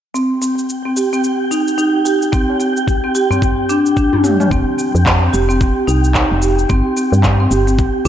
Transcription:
0.13 0.40 C4 medium
0.13 4.51 G4 medium
0.13 4.51 G5 medium
0.13 cabasa soft
0.42 0.57 C4 medium
0.42 cabasa medium
0.59 cabasa soft
0.70 cabasa soft
0.85 0.95 C4 medium
0.97 1.12 G4 medium
0.97 cabasa medium
1.13 1.23 C4 medium
1.13 cabasa soft
1.24 cabasa soft
1.51 1.67 D#4 medium
1.51 cabasa medium
1.68 cabasa soft
1.78 1.94 D#4 medium
1.78 cabasa soft
2.05 2.21 G4 medium
2.05 cabasa medium
2.22 cabasa soft
2.33 2.58 C4 medium
2.33 kick loud
2.33 cabasa soft
2.50 tabla na soft
2.60 2.75 C4 medium
2.60 cabasa medium
2.77 cabasa soft
2.88 kick loud
2.88 cabasa soft
3.04 3.14 C4 medium
3.15 3.30 G4 medium
3.15 cabasa medium
3.31 3.41 C4 medium
3.31 tabla na medium
3.31 tabla ge medium
3.31 cabasa soft
3.42 kick medium
3.42 cabasa soft
3.69 3.85 D4 medium
3.69 cabasa medium
3.86 cabasa soft
3.97 4.12 D4 medium
3.97 kick loud
3.97 cabasa soft
4.13 high tom soft
4.13 tabla ge medium
4.24 4.39 G4 medium
4.24 mid tom medium
4.24 tabla tin medium
4.24 cabasa medium
4.40 mid tom medium
4.40 tabla na medium
4.40 cabasa soft
4.51 4.64 F1 loud
4.51 4.77 C4 medium
4.51 8.08 G4 medium
4.51 8.08 G5 medium
4.51 kick loud
4.51 cabasa soft
4.78 4.94 C4 medium
4.78 cabasa medium
4.95 5.29 F2 medium
4.95 cabasa soft
5.06 kick medium
5.06 clap loud
5.06 cabasa soft
5.22 5.32 C4 medium
5.33 5.71 F1 medium
5.33 5.48 G4 medium
5.33 cabasa medium
5.49 5.59 C4 medium
5.49 cabasa soft
5.61 kick loud
5.61 cabasa soft
5.87 6.25 C2 medium
5.87 6.03 D#4 medium
5.87 cabasa medium
6.04 cabasa soft
6.15 6.30 D#4 medium
6.15 kick loud
6.15 clap medium
6.15 cabasa soft
6.31 6.66 F1 medium
6.42 6.57 G4 medium
6.42 cabasa medium
6.59 cabasa soft
6.69 6.82 G1 loud
6.69 6.95 C4 medium
6.69 kick loud
6.69 cabasa soft
6.97 7.12 C4 medium
6.97 cabasa medium
7.12 7.47 G2 loud
7.12 cabasa soft
7.24 kick loud
7.24 clap loud
7.24 cabasa soft
7.40 7.50 C4 medium
7.51 7.89 G1 medium
7.51 7.67 G4 medium
7.51 cabasa medium
7.67 7.78 C4 loud
7.67 cabasa soft
7.79 kick loud
7.79 cabasa soft

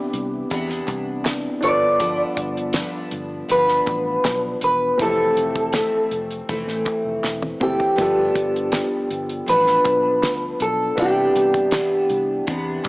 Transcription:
0.00 0.49 C3 medium
0.00 0.50 E3 medium
0.00 0.51 B3 medium
0.00 0.52 D4 medium
0.00 1.58 D4 medium
0.00 1.59 E4 medium
0.00 0.47 G4 medium
0.00 1.60 G4 medium
0.00 1.61 B4 medium
0.13 0.43 C2 loud
0.13 closed hi-hat medium
0.50 0.81 E2 medium
0.50 1.63 C3 medium
0.50 1.63 E3 medium
0.50 1.63 B3 medium
0.50 1.62 D4 loud
0.50 kick loud
0.50 closed hi-hat medium
0.69 snare soft
0.88 1.48 C2 medium
0.88 kick medium
0.88 clap medium
0.88 closed hi-hat medium
1.25 snare loud
1.25 clap medium
1.25 closed hi-hat medium
1.61 2.23 G1 loud
1.61 2.00 B3 soft
1.61 4.57 D4 medium
1.61 2.00 D4 medium
1.61 4.58 F4 medium
1.61 4.59 A4 medium
1.61 3.46 D5 medium
1.61 closed hi-hat medium
1.65 1.99 F3 soft
1.65 4.60 B4 medium
2.00 2.73 G2 medium
2.00 2.75 F3 medium
2.00 2.75 B3 medium
2.00 2.76 D4 medium
2.00 kick loud
2.00 closed hi-hat medium
2.37 2.82 G1 loud
2.37 kick loud
2.37 closed hi-hat medium
2.57 closed hi-hat medium
2.73 3.47 G2 medium
2.73 3.50 F3 medium
2.73 3.50 B3 medium
2.73 snare loud
2.73 clap medium
2.73 closed hi-hat medium
2.77 3.51 D4 medium
3.11 3.42 G1 loud
3.11 closed hi-hat medium
3.48 3.80 G1 loud
3.48 4.99 G2 medium
3.48 4.99 F3 medium
3.48 5.00 B3 medium
3.48 4.63 B4 loud
3.48 closed hi-hat medium
3.53 5.00 D4 medium
3.68 snare soft
3.86 4.17 A1 medium
3.86 kick loud
3.86 clap medium
3.86 closed hi-hat medium
4.24 4.54 B1 loud
4.24 snare loud
4.24 clap loud
4.24 closed hi-hat loud
4.61 4.92 E1 medium
4.61 4.98 B4 medium
4.61 closed hi-hat medium
4.98 5.29 F1 loud
4.98 5.72 F2 medium
4.98 5.73 E3 medium
4.98 5.74 A3 medium
4.98 7.56 C4 medium
4.98 5.74 C4 medium
4.98 7.57 E4 medium
4.98 7.58 G4 medium
4.98 kick loud
4.98 closed hi-hat loud
5.02 7.70 A4 loud
5.02 7.59 A4 medium
5.37 5.82 F1 loud
5.37 closed hi-hat medium
5.56 kick medium
5.56 closed hi-hat soft
5.72 6.48 F2 medium
5.72 6.48 E3 medium
5.72 6.49 A3 medium
5.72 6.49 C4 medium
5.72 snare loud
5.72 clap medium
5.72 closed hi-hat loud
6.11 6.41 F1 medium
6.11 closed hi-hat medium
6.31 closed hi-hat medium
6.49 6.64 F1 loud
6.49 7.61 E3 medium
6.49 7.60 A3 medium
6.49 7.59 C4 medium
6.49 kick loud
6.49 closed hi-hat medium
6.67 6.83 A1 medium
6.67 snare soft
6.86 kick loud
6.86 clap medium
6.86 closed hi-hat medium
7.05 7.20 F1 medium
7.24 7.54 E1 medium
7.24 snare medium
7.24 clap medium
7.43 high tom medium
7.60 7.76 F#1 medium
7.60 7.97 E3 soft
7.60 7.98 A3 soft
7.60 7.98 C4 soft
7.60 7.99 E4 soft
7.60 7.99 G4 soft
7.60 9.55 G4 medium
7.60 7.99 A4 medium
7.60 mid tom loud
7.80 floor tom medium
7.96 8.28 G1 loud
7.96 9.45 G2 medium
7.96 9.46 F3 medium
7.96 10.93 B3 medium
7.96 9.49 B3 medium
7.96 10.94 D4 medium
7.96 10.94 F4 medium
7.96 kick loud
7.96 closed hi-hat loud
8.00 9.50 D4 medium
8.00 10.95 A4 medium
8.35 8.81 G1 medium
8.35 kick loud
8.35 closed hi-hat medium
8.56 closed hi-hat medium
8.72 snare loud
8.72 clap medium
8.72 closed hi-hat medium
9.11 9.41 G1 medium
9.11 closed hi-hat medium
9.30 closed hi-hat medium
9.46 9.78 A1 medium
9.46 10.97 G2 medium
9.46 10.97 F3 medium
9.46 10.98 B3 medium
9.46 10.62 B4 loud
9.46 closed hi-hat medium
9.50 10.98 D4 medium
9.67 snare soft
9.85 10.23 B1 medium
9.85 kick medium
9.85 clap medium
9.85 closed hi-hat medium
10.23 10.53 D2 loud
10.23 snare loud
10.23 clap medium
10.23 closed hi-hat loud
10.60 10.90 B1 medium
10.60 11.00 A4 medium
10.60 closed hi-hat medium
10.95 11.28 C2 loud
10.95 11.70 C3 medium
10.95 11.71 E3 medium
10.95 12.89 B3 medium
10.95 11.73 B3 medium
10.95 12.89 D4 medium
10.95 11.74 D4 medium
10.95 12.89 E4 medium
10.95 kick loud
10.95 closed hi-hat medium
11.00 12.44 G4 medium
11.00 12.89 G4 medium
11.35 11.80 C2 loud
11.35 closed hi-hat medium
11.54 kick medium
11.54 closed hi-hat soft
11.71 12.45 C3 soft
11.71 12.46 E3 medium
11.71 12.48 B3 medium
11.71 12.48 D4 medium
11.71 snare loud
11.71 clap medium
11.71 closed hi-hat loud
12.10 12.40 C2 loud
12.10 closed hi-hat medium
12.47 12.78 E2 loud
12.47 12.89 C3 medium
12.47 12.89 E3 medium
12.47 12.89 B3 medium
12.47 12.89 D4 loud
12.47 kick loud
12.47 closed hi-hat medium
12.84 12.89 C2 loud
12.84 kick loud
12.84 clap medium
12.84 closed hi-hat medium

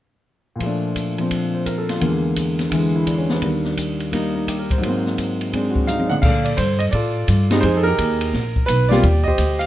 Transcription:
0.56 1.99 A#2 soft
0.56 1.17 F3 soft
0.60 2.03 A3 soft
0.60 kick soft
0.60 ride soft
0.66 2.04 D4 soft
0.96 kick soft
0.96 hi-hat pedal soft
0.96 ride soft
1.18 2.01 F3 soft
1.18 2.02 C4 soft
1.18 ride soft
1.31 kick soft
1.31 ride medium
1.54 1.72 C5 soft
1.66 1.87 A#4 soft
1.66 kick soft
1.66 hi-hat pedal medium
1.66 ride medium
1.78 1.96 A4 soft
1.89 2.08 F4 soft
1.89 snare soft
1.89 ride soft
2.01 3.42 E2 soft
2.01 2.68 D3 soft
2.01 2.72 G#3 soft
2.01 3.42 A#3 soft
2.01 kick soft
2.01 ride medium
2.36 kick soft
2.36 hi-hat pedal soft
2.36 ride medium
2.59 snare soft
2.59 ride soft
2.70 3.41 D3 soft
2.70 3.42 E3 soft
2.70 3.43 G#3 soft
2.70 kick soft
2.70 ride medium
2.96 3.13 E4 soft
3.07 3.28 D4 soft
3.07 kick soft
3.07 hi-hat pedal medium
3.07 ride medium
3.18 3.36 C#4 soft
3.29 3.48 B3 medium
3.29 snare soft
3.42 4.83 D#2 soft
3.42 4.83 D#3 soft
3.42 4.10 G3 soft
3.42 4.83 D4 soft
3.42 kick soft
3.42 ride soft
3.65 snare soft
3.77 kick soft
3.77 hi-hat pedal medium
3.77 ride medium
4.00 ride soft
4.12 4.82 G3 soft
4.12 4.83 A#3 soft
4.12 4.34 D#4 medium
4.12 kick soft
4.12 ride medium
4.36 4.54 D#4 soft
4.47 4.69 G4 soft
4.47 kick soft
4.47 hi-hat pedal medium
4.47 ride medium
4.59 4.77 A#4 soft
4.70 4.89 C5 soft
4.70 kick medium
4.70 ride soft
4.78 6.21 G#2 soft
4.78 6.22 F#3 soft
4.83 6.24 A#3 soft
4.83 kick soft
4.83 ride medium
4.89 5.52 C4 soft
5.06 snare soft
5.18 kick soft
5.18 hi-hat pedal medium
5.18 ride soft
5.41 ride soft
5.52 6.23 G#3 soft
5.52 6.23 C4 soft
5.52 6.05 D4 soft
5.52 kick soft
5.52 ride soft
5.71 5.95 F#4 soft
5.76 kick soft
5.87 6.15 D#4 soft
5.87 6.11 F5 medium
5.87 hi-hat pedal medium
5.87 high tom soft
5.99 high tom soft
6.06 6.30 D4 soft
6.06 6.15 F#5 medium
6.11 mid tom medium
6.22 6.57 A#2 medium
6.22 6.90 A4 medium
6.22 6.43 D5 medium
6.22 6.46 F5 medium
6.22 kick medium
6.22 crash medium
6.44 6.58 D5 medium
6.44 ride soft
6.57 6.92 G2 medium
6.57 6.81 C5 medium
6.57 kick soft
6.57 hi-hat pedal soft
6.57 ride medium
6.79 6.84 D#5 medium
6.79 ride soft
6.91 7.27 A2 medium
6.91 7.60 F4 soft
6.91 7.60 A4 medium
6.91 7.46 D5 medium
6.91 kick soft
6.91 ride medium
7.28 7.62 G2 medium
7.28 kick soft
7.28 hi-hat pedal medium
7.28 ride medium
7.51 7.62 G3 medium
7.51 7.62 G#3 medium
7.51 7.62 C4 medium
7.51 7.63 D#4 medium
7.51 snare medium
7.51 ride soft
7.61 7.97 F2 medium
7.61 7.86 D#4 medium
7.61 8.30 G#4 medium
7.61 7.76 C5 medium
7.61 kick soft
7.61 ride medium
7.77 7.86 A4 medium
7.83 8.31 D#4 medium
7.83 8.63 A#4 medium
7.88 8.31 G4 medium
7.98 8.32 D#2 medium
7.98 kick soft
7.98 hi-hat pedal soft
7.98 ride medium
8.21 ride medium
8.33 8.67 A#1 medium
8.33 kick soft
8.33 snare soft
8.56 kick medium
8.66 9.02 B1 medium
8.66 8.88 B4 medium
8.66 kick soft
8.66 hi-hat pedal medium
8.66 ride medium
8.89 9.02 G3 medium
8.89 9.02 A#3 medium
8.89 9.02 C4 medium
8.89 9.02 F4 medium
8.89 9.26 G4 medium
8.89 9.26 D5 medium
8.89 snare medium
9.03 9.37 D#2 medium
9.03 kick soft
9.03 ride soft
9.24 9.61 D#5 medium
9.24 kick soft
9.28 9.66 G4 medium
9.28 9.66 C5 medium
9.38 9.66 D2 medium
9.38 kick soft
9.38 hi-hat pedal soft
9.38 ride medium
9.59 9.66 F5 medium
9.59 ride soft

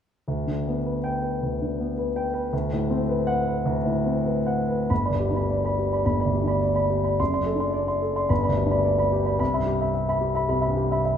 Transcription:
0.28 1.39 D2 soft
0.47 0.78 D3 soft
0.66 0.97 B3 soft
0.85 1.16 B4 soft
1.04 1.34 G5 medium
1.23 1.53 B4 soft
1.42 2.49 D2 soft
1.62 1.91 D3 soft
1.80 2.09 B3 soft
1.98 2.27 B4 soft
2.16 2.45 G5 soft
2.34 2.52 B4 soft
2.53 3.63 D2 soft
2.72 3.02 A2 soft
2.91 3.20 C4 soft
3.09 3.39 B4 soft
3.27 3.58 F#5 medium
3.47 3.78 B4 soft
3.65 4.86 D2 medium
3.85 4.17 A2 soft
4.06 4.39 C4 soft
4.26 4.61 B4 soft
4.47 4.82 F#5 soft
4.69 4.90 B4 soft
4.90 6.02 G1 soft
4.90 5.04 B5 medium
5.05 5.19 D5 soft
5.05 5.19 B5 soft
5.10 5.42 D2 soft
5.20 5.44 G4 soft
5.30 5.61 D4 soft
5.36 5.49 D5 soft
5.36 5.49 B5 soft
5.50 5.63 D5 soft
5.64 5.77 D5 soft
5.64 5.77 B5 soft
5.79 6.01 G4 soft
5.92 6.04 D5 soft
5.92 6.04 B5 soft
6.05 7.16 G1 soft
6.05 6.19 B5 soft
6.20 6.32 D5 soft
6.20 6.32 B5 soft
6.25 6.54 D2 soft
6.34 6.56 G4 soft
6.43 6.73 D4 soft
6.47 6.60 D5 soft
6.47 6.60 B5 soft
6.62 6.73 D5 soft
6.75 6.88 D5 soft
6.75 6.89 B5 soft
6.90 7.13 G4 soft
7.04 7.17 D5 soft
7.04 7.18 B5 soft
7.20 8.27 F#1 soft
7.20 7.32 C6 medium
7.33 7.46 D5 soft
7.33 7.46 C6 soft
7.38 7.67 F#2 soft
7.46 7.69 A4 soft
7.55 7.85 D4 soft
7.60 7.72 D5 soft
7.60 7.73 C6 soft
7.74 7.86 D5 soft
7.88 8.01 D5 soft
7.88 8.01 C6 soft
8.02 8.24 A4 soft
8.16 8.29 D5 soft
8.16 8.29 C6 soft
8.29 9.37 G1 soft
8.29 8.42 B5 medium
8.43 8.56 D5 soft
8.43 8.56 B5 soft
8.49 8.78 D2 soft
8.57 8.79 G4 soft
8.66 8.96 D4 soft
8.71 8.83 D5 soft
8.71 8.84 B5 soft
8.85 8.97 D5 soft
8.98 9.11 D5 soft
8.98 9.11 B5 soft
9.12 9.35 G4 soft
9.26 9.39 D5 soft
9.26 9.38 B5 soft
9.39 10.46 C2 medium
9.39 9.53 B5 medium
9.54 9.66 E5 soft
9.54 9.67 B5 soft
9.58 9.88 G2 soft
9.66 9.89 G4 soft
9.81 9.92 E5 soft
9.81 9.94 B5 soft
9.94 10.07 E5 soft
10.08 10.21 E5 soft
10.08 10.21 B5 soft
10.21 10.44 G4 soft
10.35 10.48 E5 soft
10.35 10.47 B5 soft
10.49 11.18 C2 soft
10.49 10.61 B5 soft
10.61 10.75 E5 soft
10.61 10.75 B5 soft
10.68 10.98 G2 soft
10.77 11.00 G4 soft
10.91 11.04 E5 soft
10.91 11.04 B5 soft
11.05 11.17 E5 soft

